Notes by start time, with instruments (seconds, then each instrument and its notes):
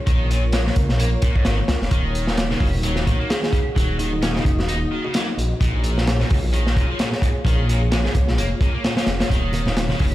Already playing: analog synth pad A#3 F4 C#5
0.07 detuned saw bass A#1, distorted electric guitar D#3, analog synth pad A#4, kick, closed hi-hat
0.30 distorted electric guitar A#2, closed hi-hat
0.52 distorted electric guitar G#3, snare, closed hi-hat
0.66 distorted electric guitar G#2, snare
0.76 detuned saw bass C#2, kick, closed hi-hat
0.89 detuned saw bass A#1, snare
0.99 distorted electric guitar A#3, closed hi-hat
1.22 distorted electric guitar A#2, kick, closed hi-hat
1.35 detuned saw bass G#1, distorted electric guitar G#2, kick
1.45 detuned saw bass G#1, distorted electric guitar D#3, snare, closed hi-hat
1.68 detuned saw bass C#2, snare, closed hi-hat
1.81 detuned saw bass F1, snare
1.91 detuned saw bass D#1, distorted electric guitar D#3, analog synth pad D#4 F#4, kick, closed hi-hat
2.15 closed hi-hat
2.27 snare
2.37 snare, closed hi-hat
2.51 distorted electric guitar C#3, snare
2.60 detuned saw bass F#1, distorted electric guitar C#3, kick, open hi-hat
2.74 detuned saw bass D#1
2.83 distorted electric guitar F#3, closed hi-hat
2.96 snare
3.06 detuned saw bass A#1, distorted electric guitar D#3, kick, closed hi-hat
3.19 distorted electric guitar A#3
3.29 distorted electric guitar D#3, kalimba G#4, snare, closed hi-hat
3.43 kalimba G#4, snare
3.53 distorted electric guitar C#3, kick, closed hi-hat
3.76 detuned saw bass D#1, distorted electric guitar F#3, analog synth pad D#5, kick, closed hi-hat
3.99 distorted electric guitar D#3, kalimba D#4, closed hi-hat
4.13 kalimba D#4
4.22 distorted electric guitar C#4, snare, closed hi-hat
4.35 distorted electric guitar C#3, snare
4.45 detuned saw bass F#1, kick, closed hi-hat
4.58 detuned saw bass D#1, kalimba F#4, snare
4.68 distorted electric guitar D#4, closed hi-hat
4.91 distorted electric guitar D#3
5.04 distorted electric guitar C#3, kalimba F#4
5.14 distorted electric guitar F#3, snare, closed hi-hat
5.38 detuned saw bass A#1, closed hi-hat
5.61 detuned saw bass A#1, distorted electric guitar A#2, analog synth pad A#3 F4 G#4 C#5, kick, closed hi-hat
5.84 closed hi-hat
5.98 snare
6.07 snare, closed hi-hat
6.20 distorted electric guitar G#2, snare
6.30 detuned saw bass C#2, distorted electric guitar G#2, kick, open hi-hat
6.43 detuned saw bass A#1
6.53 distorted electric guitar D#3, closed hi-hat
6.67 snare
6.76 detuned saw bass F1, distorted electric guitar A#2, kick, closed hi-hat
6.89 distorted electric guitar F3
6.99 distorted electric guitar A#2, snare, closed hi-hat
7.12 snare
7.22 distorted electric guitar G#2, kick, closed hi-hat
7.45 detuned saw bass A#1, distorted electric guitar D#3, kick, closed hi-hat
7.69 distorted electric guitar A#2, closed hi-hat
7.92 distorted electric guitar G#3, snare, closed hi-hat
8.05 distorted electric guitar G#2, snare
8.15 detuned saw bass C#2, kick, closed hi-hat
8.28 detuned saw bass A#1, snare
8.38 detuned saw bass F1, distorted electric guitar A#3, closed hi-hat
8.61 detuned saw bass C#2, distorted electric guitar A#2, kick, closed hi-hat
8.74 distorted electric guitar A#3
8.84 distorted electric guitar A#2, snare, closed hi-hat
8.97 distorted electric guitar F3, snare, closed hi-hat
9.06 detuned saw bass F1, snare, closed hi-hat
9.20 distorted electric guitar G#2, snare, closed hi-hat
9.29 detuned saw bass D#1, distorted electric guitar D#3, analog synth pad D#4 F#4, kick, closed hi-hat, muted conga
9.53 closed hi-hat, muted conga
9.66 snare, low conga
9.77 snare, closed hi-hat
9.89 distorted electric guitar C#3, snare, muted conga, high conga
9.99 detuned saw bass F#1, distorted electric guitar C#3, kick, open hi-hat